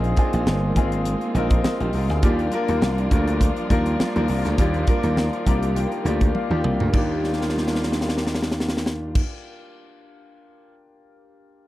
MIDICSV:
0, 0, Header, 1, 5, 480
1, 0, Start_track
1, 0, Key_signature, -3, "major"
1, 0, Tempo, 587659
1, 1824, Time_signature, 4, 2, 24, 8
1, 9536, End_track
2, 0, Start_track
2, 0, Title_t, "Grand piano"
2, 0, Program_c, 0, 0
2, 0, Note_on_c, 0, 60, 89
2, 0, Note_on_c, 0, 63, 83
2, 0, Note_on_c, 0, 65, 83
2, 0, Note_on_c, 0, 68, 101
2, 59, Control_c, 0, 64, 127
2, 83, Note_off_c, 0, 60, 0
2, 83, Note_off_c, 0, 63, 0
2, 85, Note_off_c, 0, 65, 0
2, 87, Note_off_c, 0, 68, 0
2, 143, Note_on_c, 0, 60, 96
2, 147, Note_on_c, 0, 62, 71
2, 150, Note_on_c, 0, 65, 83
2, 154, Note_on_c, 0, 68, 98
2, 201, Note_on_c, 0, 63, 84
2, 202, Note_off_c, 0, 62, 0
2, 497, Note_off_c, 0, 60, 0
2, 500, Note_off_c, 0, 65, 0
2, 502, Note_off_c, 0, 68, 0
2, 526, Note_off_c, 0, 63, 0
2, 622, Note_on_c, 0, 60, 86
2, 626, Note_on_c, 0, 63, 79
2, 628, Note_on_c, 0, 65, 76
2, 632, Note_on_c, 0, 68, 94
2, 976, Note_off_c, 0, 60, 0
2, 978, Note_off_c, 0, 63, 0
2, 979, Note_off_c, 0, 65, 0
2, 981, Note_off_c, 0, 68, 0
2, 1106, Note_on_c, 0, 60, 91
2, 1108, Note_on_c, 0, 63, 84
2, 1113, Note_on_c, 0, 65, 81
2, 1116, Note_on_c, 0, 70, 100
2, 1345, Note_off_c, 0, 70, 0
2, 1346, Note_off_c, 0, 63, 0
2, 1348, Note_off_c, 0, 65, 0
2, 1351, Note_on_c, 0, 75, 66
2, 1358, Note_on_c, 0, 70, 56
2, 1365, Note_off_c, 0, 60, 0
2, 1471, Note_off_c, 0, 75, 0
2, 1474, Note_off_c, 0, 70, 0
2, 1478, Note_on_c, 0, 72, 70
2, 1481, Note_on_c, 0, 67, 62
2, 1581, Note_off_c, 0, 72, 0
2, 1583, Note_off_c, 0, 67, 0
2, 1590, Note_on_c, 0, 70, 79
2, 1596, Note_on_c, 0, 65, 63
2, 1710, Note_off_c, 0, 70, 0
2, 1714, Note_off_c, 0, 65, 0
2, 1717, Note_on_c, 0, 68, 67
2, 1724, Note_on_c, 0, 63, 54
2, 1824, Note_on_c, 0, 58, 90
2, 1827, Note_on_c, 0, 62, 87
2, 1830, Note_on_c, 0, 65, 81
2, 1831, Note_on_c, 0, 67, 98
2, 1834, Control_c, 0, 64, 0
2, 1944, Note_off_c, 0, 68, 0
2, 1947, Note_off_c, 0, 63, 0
2, 1974, Control_c, 0, 64, 127
2, 2002, Note_off_c, 0, 58, 0
2, 2004, Note_off_c, 0, 62, 0
2, 2005, Note_off_c, 0, 65, 0
2, 2006, Note_off_c, 0, 67, 0
2, 2061, Note_on_c, 0, 58, 91
2, 2064, Note_on_c, 0, 62, 82
2, 2069, Note_on_c, 0, 65, 89
2, 2073, Note_on_c, 0, 70, 102
2, 2416, Note_off_c, 0, 58, 0
2, 2418, Note_off_c, 0, 62, 0
2, 2420, Note_off_c, 0, 65, 0
2, 2422, Note_off_c, 0, 70, 0
2, 2537, Note_on_c, 0, 58, 88
2, 2542, Note_on_c, 0, 62, 77
2, 2546, Note_on_c, 0, 65, 79
2, 2548, Note_on_c, 0, 70, 93
2, 2894, Note_off_c, 0, 58, 0
2, 2897, Note_off_c, 0, 62, 0
2, 2899, Note_off_c, 0, 65, 0
2, 2900, Note_off_c, 0, 70, 0
2, 3017, Note_on_c, 0, 58, 86
2, 3022, Note_on_c, 0, 62, 81
2, 3025, Note_on_c, 0, 65, 81
2, 3027, Note_on_c, 0, 70, 105
2, 3281, Note_off_c, 0, 58, 0
2, 3283, Note_off_c, 0, 62, 0
2, 3285, Note_off_c, 0, 65, 0
2, 3286, Note_off_c, 0, 70, 0
2, 3390, Note_on_c, 0, 58, 89
2, 3394, Note_on_c, 0, 62, 83
2, 3397, Note_on_c, 0, 65, 80
2, 3401, Note_on_c, 0, 70, 102
2, 3649, Note_off_c, 0, 58, 0
2, 3652, Note_off_c, 0, 62, 0
2, 3653, Note_off_c, 0, 65, 0
2, 3655, Note_off_c, 0, 70, 0
2, 3745, Note_on_c, 0, 58, 84
2, 3748, Note_on_c, 0, 62, 84
2, 3752, Note_on_c, 0, 65, 82
2, 3754, Note_on_c, 0, 67, 93
2, 3923, Note_off_c, 0, 58, 0
2, 3924, Note_off_c, 0, 62, 0
2, 3926, Note_off_c, 0, 65, 0
2, 3928, Note_off_c, 0, 67, 0
2, 3983, Note_on_c, 0, 58, 86
2, 3986, Note_on_c, 0, 62, 79
2, 3989, Note_on_c, 0, 65, 81
2, 3990, Note_on_c, 0, 70, 103
2, 4337, Note_off_c, 0, 58, 0
2, 4339, Note_off_c, 0, 62, 0
2, 4340, Note_off_c, 0, 65, 0
2, 4341, Note_off_c, 0, 70, 0
2, 4466, Note_on_c, 0, 58, 79
2, 4467, Note_on_c, 0, 62, 76
2, 4467, Note_on_c, 0, 82, 68
2, 4471, Note_on_c, 0, 65, 74
2, 4475, Note_on_c, 0, 67, 86
2, 4690, Note_off_c, 0, 82, 0
2, 4709, Note_on_c, 0, 79, 73
2, 4819, Note_off_c, 0, 58, 0
2, 4819, Note_off_c, 0, 62, 0
2, 4821, Note_off_c, 0, 65, 0
2, 4823, Note_off_c, 0, 67, 0
2, 4940, Note_on_c, 0, 58, 89
2, 4945, Note_on_c, 0, 62, 82
2, 4947, Note_on_c, 0, 65, 81
2, 4951, Note_on_c, 0, 67, 95
2, 5154, Note_off_c, 0, 79, 0
2, 5184, Note_on_c, 0, 77, 72
2, 5203, Note_off_c, 0, 58, 0
2, 5206, Note_off_c, 0, 62, 0
2, 5206, Note_off_c, 0, 65, 0
2, 5208, Note_off_c, 0, 67, 0
2, 5309, Note_on_c, 0, 58, 87
2, 5313, Note_on_c, 0, 62, 76
2, 5316, Note_on_c, 0, 65, 74
2, 5319, Note_on_c, 0, 67, 96
2, 5569, Note_off_c, 0, 58, 0
2, 5571, Note_off_c, 0, 62, 0
2, 5573, Note_off_c, 0, 65, 0
2, 5574, Note_off_c, 0, 67, 0
2, 5632, Note_off_c, 0, 77, 0
2, 5645, Note_on_c, 0, 58, 79
2, 5659, Note_on_c, 0, 62, 73
2, 5671, Note_on_c, 0, 65, 70
2, 5677, Control_c, 0, 64, 0
2, 5685, Note_on_c, 0, 67, 90
2, 5802, Control_c, 0, 64, 127
2, 7521, Note_off_c, 0, 58, 0
2, 7527, Note_off_c, 0, 62, 0
2, 7534, Note_off_c, 0, 65, 0
2, 7540, Note_off_c, 0, 67, 0
2, 9536, End_track
3, 0, Start_track
3, 0, Title_t, "String section"
3, 0, Program_c, 1, 48
3, 0, Note_on_c, 1, 51, 73
3, 0, Note_on_c, 1, 56, 73
3, 0, Note_on_c, 1, 58, 76
3, 0, Note_on_c, 1, 65, 85
3, 1792, Note_off_c, 1, 51, 0
3, 1806, Note_off_c, 1, 58, 0
3, 1807, Note_off_c, 1, 56, 0
3, 1825, Note_on_c, 1, 53, 81
3, 1825, Note_on_c, 1, 55, 72
3, 1827, Note_on_c, 1, 62, 71
3, 3727, Note_off_c, 1, 62, 0
3, 3749, Note_on_c, 1, 51, 74
3, 5633, Note_off_c, 1, 53, 0
3, 5633, Note_off_c, 1, 55, 0
3, 5634, Note_off_c, 1, 65, 0
3, 5648, Note_off_c, 1, 51, 0
3, 5667, Note_on_c, 1, 51, 74
3, 5667, Note_on_c, 1, 62, 68
3, 5668, Note_on_c, 1, 65, 83
3, 5671, Note_on_c, 1, 55, 71
3, 7531, Note_off_c, 1, 62, 0
3, 7532, Note_off_c, 1, 51, 0
3, 7532, Note_off_c, 1, 65, 0
3, 7534, Note_off_c, 1, 55, 0
3, 9536, End_track
4, 0, Start_track
4, 0, Title_t, "Slap bass"
4, 0, Program_c, 2, 36
4, 0, Note_on_c, 2, 34, 104
4, 104, Note_off_c, 2, 34, 0
4, 274, Note_on_c, 2, 34, 93
4, 366, Note_off_c, 2, 34, 0
4, 379, Note_on_c, 2, 31, 92
4, 582, Note_off_c, 2, 31, 0
4, 619, Note_on_c, 2, 32, 81
4, 930, Note_off_c, 2, 32, 0
4, 1098, Note_on_c, 2, 34, 91
4, 1301, Note_off_c, 2, 34, 0
4, 1472, Note_on_c, 2, 34, 85
4, 1565, Note_off_c, 2, 34, 0
4, 1582, Note_on_c, 2, 36, 86
4, 1712, Note_off_c, 2, 36, 0
4, 1712, Note_on_c, 2, 38, 87
4, 1805, Note_off_c, 2, 38, 0
4, 1820, Note_on_c, 2, 39, 109
4, 2023, Note_off_c, 2, 39, 0
4, 2194, Note_on_c, 2, 39, 93
4, 2286, Note_off_c, 2, 39, 0
4, 2302, Note_on_c, 2, 36, 88
4, 2504, Note_off_c, 2, 36, 0
4, 2541, Note_on_c, 2, 38, 92
4, 2852, Note_off_c, 2, 38, 0
4, 3025, Note_on_c, 2, 39, 88
4, 3225, Note_off_c, 2, 39, 0
4, 3397, Note_on_c, 2, 39, 93
4, 3488, Note_off_c, 2, 39, 0
4, 3505, Note_on_c, 2, 36, 91
4, 3613, Note_off_c, 2, 36, 0
4, 3635, Note_on_c, 2, 38, 89
4, 3727, Note_off_c, 2, 38, 0
4, 3744, Note_on_c, 2, 39, 101
4, 3945, Note_off_c, 2, 39, 0
4, 4113, Note_on_c, 2, 39, 92
4, 4314, Note_off_c, 2, 39, 0
4, 4464, Note_on_c, 2, 36, 85
4, 4773, Note_off_c, 2, 36, 0
4, 4944, Note_on_c, 2, 38, 82
4, 5145, Note_off_c, 2, 38, 0
4, 5314, Note_on_c, 2, 39, 90
4, 5406, Note_off_c, 2, 39, 0
4, 5422, Note_on_c, 2, 36, 83
4, 5532, Note_off_c, 2, 36, 0
4, 5555, Note_on_c, 2, 38, 87
4, 5647, Note_off_c, 2, 38, 0
4, 5666, Note_on_c, 2, 39, 100
4, 7531, Note_off_c, 2, 39, 0
4, 9536, End_track
5, 0, Start_track
5, 0, Title_t, "Drums"
5, 32, Note_on_c, 9, 42, 36
5, 114, Note_off_c, 9, 42, 0
5, 135, Note_on_c, 9, 42, 76
5, 141, Note_on_c, 9, 36, 100
5, 217, Note_off_c, 9, 42, 0
5, 222, Note_off_c, 9, 36, 0
5, 270, Note_on_c, 9, 42, 58
5, 352, Note_off_c, 9, 42, 0
5, 379, Note_on_c, 9, 63, 77
5, 383, Note_on_c, 9, 38, 103
5, 461, Note_off_c, 9, 63, 0
5, 465, Note_off_c, 9, 38, 0
5, 621, Note_on_c, 9, 36, 97
5, 623, Note_on_c, 9, 42, 67
5, 702, Note_off_c, 9, 36, 0
5, 705, Note_off_c, 9, 42, 0
5, 751, Note_on_c, 9, 42, 53
5, 833, Note_off_c, 9, 42, 0
5, 861, Note_on_c, 9, 42, 97
5, 865, Note_on_c, 9, 62, 45
5, 943, Note_off_c, 9, 42, 0
5, 947, Note_off_c, 9, 62, 0
5, 990, Note_on_c, 9, 42, 34
5, 1071, Note_off_c, 9, 42, 0
5, 1103, Note_on_c, 9, 42, 63
5, 1105, Note_on_c, 9, 62, 54
5, 1105, Note_on_c, 9, 64, 74
5, 1185, Note_off_c, 9, 42, 0
5, 1187, Note_off_c, 9, 62, 0
5, 1187, Note_off_c, 9, 64, 0
5, 1228, Note_on_c, 9, 42, 56
5, 1231, Note_on_c, 9, 36, 105
5, 1310, Note_off_c, 9, 42, 0
5, 1313, Note_off_c, 9, 36, 0
5, 1343, Note_on_c, 9, 38, 114
5, 1346, Note_on_c, 9, 63, 80
5, 1424, Note_off_c, 9, 38, 0
5, 1427, Note_off_c, 9, 63, 0
5, 1473, Note_on_c, 9, 42, 34
5, 1475, Note_on_c, 9, 63, 78
5, 1555, Note_off_c, 9, 42, 0
5, 1557, Note_off_c, 9, 63, 0
5, 1575, Note_on_c, 9, 46, 68
5, 1657, Note_off_c, 9, 46, 0
5, 1712, Note_on_c, 9, 42, 48
5, 1715, Note_on_c, 9, 38, 33
5, 1794, Note_off_c, 9, 42, 0
5, 1797, Note_off_c, 9, 38, 0
5, 1818, Note_on_c, 9, 42, 89
5, 1821, Note_on_c, 9, 36, 104
5, 1824, Note_on_c, 9, 62, 47
5, 1900, Note_off_c, 9, 42, 0
5, 1903, Note_off_c, 9, 36, 0
5, 1906, Note_off_c, 9, 62, 0
5, 1953, Note_on_c, 9, 42, 36
5, 2034, Note_off_c, 9, 42, 0
5, 2055, Note_on_c, 9, 42, 78
5, 2137, Note_off_c, 9, 42, 0
5, 2193, Note_on_c, 9, 42, 59
5, 2274, Note_off_c, 9, 42, 0
5, 2301, Note_on_c, 9, 63, 74
5, 2306, Note_on_c, 9, 38, 105
5, 2383, Note_off_c, 9, 63, 0
5, 2387, Note_off_c, 9, 38, 0
5, 2435, Note_on_c, 9, 42, 35
5, 2517, Note_off_c, 9, 42, 0
5, 2542, Note_on_c, 9, 36, 95
5, 2545, Note_on_c, 9, 42, 68
5, 2624, Note_off_c, 9, 36, 0
5, 2627, Note_off_c, 9, 42, 0
5, 2676, Note_on_c, 9, 42, 53
5, 2758, Note_off_c, 9, 42, 0
5, 2783, Note_on_c, 9, 36, 93
5, 2787, Note_on_c, 9, 42, 91
5, 2787, Note_on_c, 9, 62, 43
5, 2865, Note_off_c, 9, 36, 0
5, 2868, Note_off_c, 9, 62, 0
5, 2869, Note_off_c, 9, 42, 0
5, 2912, Note_on_c, 9, 42, 36
5, 2993, Note_off_c, 9, 42, 0
5, 3024, Note_on_c, 9, 36, 89
5, 3027, Note_on_c, 9, 42, 64
5, 3027, Note_on_c, 9, 62, 54
5, 3106, Note_off_c, 9, 36, 0
5, 3109, Note_off_c, 9, 42, 0
5, 3109, Note_off_c, 9, 62, 0
5, 3152, Note_on_c, 9, 42, 57
5, 3234, Note_off_c, 9, 42, 0
5, 3267, Note_on_c, 9, 38, 120
5, 3270, Note_on_c, 9, 63, 80
5, 3349, Note_off_c, 9, 38, 0
5, 3351, Note_off_c, 9, 63, 0
5, 3397, Note_on_c, 9, 42, 36
5, 3399, Note_on_c, 9, 63, 77
5, 3478, Note_off_c, 9, 42, 0
5, 3481, Note_off_c, 9, 63, 0
5, 3497, Note_on_c, 9, 46, 68
5, 3579, Note_off_c, 9, 46, 0
5, 3634, Note_on_c, 9, 42, 49
5, 3637, Note_on_c, 9, 38, 33
5, 3716, Note_off_c, 9, 42, 0
5, 3718, Note_off_c, 9, 38, 0
5, 3743, Note_on_c, 9, 42, 86
5, 3744, Note_on_c, 9, 36, 98
5, 3751, Note_on_c, 9, 62, 50
5, 3824, Note_off_c, 9, 42, 0
5, 3825, Note_off_c, 9, 36, 0
5, 3833, Note_off_c, 9, 62, 0
5, 3873, Note_on_c, 9, 42, 35
5, 3954, Note_off_c, 9, 42, 0
5, 3978, Note_on_c, 9, 42, 81
5, 3982, Note_on_c, 9, 36, 101
5, 3990, Note_on_c, 9, 62, 28
5, 4059, Note_off_c, 9, 42, 0
5, 4064, Note_off_c, 9, 36, 0
5, 4072, Note_off_c, 9, 62, 0
5, 4112, Note_on_c, 9, 42, 56
5, 4194, Note_off_c, 9, 42, 0
5, 4224, Note_on_c, 9, 63, 76
5, 4226, Note_on_c, 9, 38, 97
5, 4305, Note_off_c, 9, 63, 0
5, 4307, Note_off_c, 9, 38, 0
5, 4355, Note_on_c, 9, 42, 34
5, 4436, Note_off_c, 9, 42, 0
5, 4464, Note_on_c, 9, 36, 94
5, 4467, Note_on_c, 9, 42, 70
5, 4545, Note_off_c, 9, 36, 0
5, 4549, Note_off_c, 9, 42, 0
5, 4595, Note_on_c, 9, 42, 50
5, 4677, Note_off_c, 9, 42, 0
5, 4707, Note_on_c, 9, 62, 45
5, 4708, Note_on_c, 9, 42, 89
5, 4789, Note_off_c, 9, 62, 0
5, 4790, Note_off_c, 9, 42, 0
5, 4833, Note_on_c, 9, 42, 32
5, 4915, Note_off_c, 9, 42, 0
5, 4943, Note_on_c, 9, 62, 51
5, 4943, Note_on_c, 9, 64, 75
5, 4949, Note_on_c, 9, 42, 65
5, 5024, Note_off_c, 9, 62, 0
5, 5024, Note_off_c, 9, 64, 0
5, 5030, Note_off_c, 9, 42, 0
5, 5071, Note_on_c, 9, 42, 53
5, 5074, Note_on_c, 9, 36, 100
5, 5153, Note_off_c, 9, 42, 0
5, 5156, Note_off_c, 9, 36, 0
5, 5184, Note_on_c, 9, 63, 74
5, 5185, Note_on_c, 9, 48, 58
5, 5266, Note_off_c, 9, 63, 0
5, 5267, Note_off_c, 9, 48, 0
5, 5311, Note_on_c, 9, 63, 73
5, 5316, Note_on_c, 9, 47, 64
5, 5393, Note_off_c, 9, 63, 0
5, 5398, Note_off_c, 9, 47, 0
5, 5426, Note_on_c, 9, 45, 100
5, 5508, Note_off_c, 9, 45, 0
5, 5557, Note_on_c, 9, 43, 93
5, 5638, Note_off_c, 9, 43, 0
5, 5662, Note_on_c, 9, 62, 80
5, 5666, Note_on_c, 9, 36, 101
5, 5667, Note_on_c, 9, 49, 88
5, 5743, Note_off_c, 9, 62, 0
5, 5747, Note_off_c, 9, 36, 0
5, 5748, Note_off_c, 9, 49, 0
5, 5912, Note_on_c, 9, 38, 46
5, 5986, Note_off_c, 9, 38, 0
5, 5986, Note_on_c, 9, 38, 50
5, 6057, Note_off_c, 9, 38, 0
5, 6057, Note_on_c, 9, 38, 53
5, 6121, Note_off_c, 9, 38, 0
5, 6121, Note_on_c, 9, 38, 53
5, 6190, Note_off_c, 9, 38, 0
5, 6190, Note_on_c, 9, 38, 57
5, 6267, Note_off_c, 9, 38, 0
5, 6267, Note_on_c, 9, 38, 60
5, 6333, Note_off_c, 9, 38, 0
5, 6333, Note_on_c, 9, 38, 61
5, 6398, Note_off_c, 9, 38, 0
5, 6398, Note_on_c, 9, 38, 64
5, 6472, Note_off_c, 9, 38, 0
5, 6472, Note_on_c, 9, 38, 68
5, 6544, Note_off_c, 9, 38, 0
5, 6544, Note_on_c, 9, 38, 69
5, 6607, Note_off_c, 9, 38, 0
5, 6607, Note_on_c, 9, 38, 70
5, 6678, Note_off_c, 9, 38, 0
5, 6678, Note_on_c, 9, 38, 70
5, 6752, Note_off_c, 9, 38, 0
5, 6752, Note_on_c, 9, 38, 74
5, 6816, Note_off_c, 9, 38, 0
5, 6816, Note_on_c, 9, 38, 74
5, 6882, Note_off_c, 9, 38, 0
5, 6882, Note_on_c, 9, 38, 74
5, 6955, Note_off_c, 9, 38, 0
5, 6955, Note_on_c, 9, 38, 78
5, 7028, Note_off_c, 9, 38, 0
5, 7028, Note_on_c, 9, 38, 94
5, 7094, Note_off_c, 9, 38, 0
5, 7094, Note_on_c, 9, 38, 93
5, 7164, Note_off_c, 9, 38, 0
5, 7164, Note_on_c, 9, 38, 87
5, 7238, Note_off_c, 9, 38, 0
5, 7238, Note_on_c, 9, 38, 94
5, 7320, Note_off_c, 9, 38, 0
5, 7476, Note_on_c, 9, 36, 108
5, 7477, Note_on_c, 9, 49, 96
5, 7558, Note_off_c, 9, 36, 0
5, 7558, Note_off_c, 9, 49, 0
5, 9536, End_track
0, 0, End_of_file